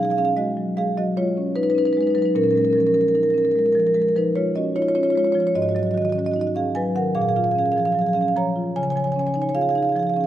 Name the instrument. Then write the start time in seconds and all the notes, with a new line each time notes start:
marimba
Already playing: B2
0.00 D#4 G#4
0.05 F5
0.10 G#4 F5
0.17 C#4 G#4 F5
0.25 G#4 F5
0.37 G#3 F#4 D#5
0.57 F#3
0.77 G#3 G#4 F5
0.97 F#3 F#4 D#5
1.17 G#3 F4 C#5
1.37 C#4
1.56 D#4 B4
1.63 D#4 B4
1.70 D#4 B4
1.75 C#4 D#4 B4
1.85 D#4 B4
1.93 D#4 B4
1.97 G#3 B4
2.03 D#4
2.07 D#4 B4
2.15 F#3 D#4 B4
2.22 D#4 B4
2.35 A#2 C#4 A#4
2.43 C#4 A#4
2.51 C#4 A#4
2.56 G#3 A#4
2.61 C#4 A#4
2.70 C#4 A#4
2.75 F3 C#4
2.80 A#4
2.87 C#4 A#4
2.94 C#4 A#4
3.01 A#4
3.08 A#4
3.15 D#4 A#4
3.23 A#4
3.30 C#4 A#4
3.38 A#4
3.45 A#4
3.51 A#4
3.56 G#3 A#4
3.66 A#4
3.72 F3 A#4
3.80 A#4
3.87 A#4
3.94 G#3 A#4
4.02 A#4
4.08 A#4
4.16 F3 D#4 B4
4.36 G#3 F4 C#5
4.55 C#4 F#4 D#5
4.76 D#4 F4 C#5
4.82 F4 C#5
4.88 F4 C#5
4.95 C#4 F4 C#5
5.03 F4 C#5
5.10 F4 C#5
5.15 G#3 F4 C#5
5.25 F4 C#5
5.32 F3 F4 C#5
5.40 F4 C#5
5.47 C#5
5.55 G#2 F#4 D#5
5.62 F#4 D#5
5.69 F#4 D#5
5.75 F#3 D#5
5.79 F#4 D#5
5.87 F#4
5.91 D#3 F#4 D#5
5.98 D#5
6.02 F#4 D#5
6.09 F#4 D#5
6.15 C#4 F#4 D#5
6.25 F#4 D#5
6.32 F#4 D#5
6.36 D#4 F#4
6.41 D#5
6.47 F#4
6.55 C#4 G#4 F5
6.75 F#3 B4 G#5
6.95 D#3 A#4 F#5
7.15 A#2 G#4 F5
7.21 G#4 F5
7.28 G#4 F5
7.36 F4 G#4 F5
7.44 G#4 F5
7.51 G#4 F5
7.55 C#4 G#4 F5
7.66 G#4 F5
7.72 G#4 F5
7.77 F3 G#4 F5
7.85 G#4 F5
7.92 F#3 G#4 F5
7.99 G#4 F5
8.06 G#4 F5
8.13 C#4 G#4 F5
8.21 G#4 F5
8.28 F5
8.36 F3 C#5 A#5
8.56 F4
8.76 C#3 C#5 G#5
8.83 C#5 G#5
8.90 C#5 G#5
8.96 F3 C#5 G#5
9.04 C#5 G#5
9.12 C#5 G#5
9.16 C#4 G#5
9.21 C#5
9.27 C#5 G#5
9.34 D#4 C#5 G#5
9.42 C#5 G#5
9.49 C#5 G#5
9.55 F4 G#4 F5
9.61 G#4 F5
9.69 G#4 F5
9.75 D#4 G#4 F5
9.83 G#4 F5
9.89 G#4 F5
9.95 F3 G#4 F5
10.03 F5
10.07 G#4 F5
10.14 C#4 G#4 F5
10.21 G#4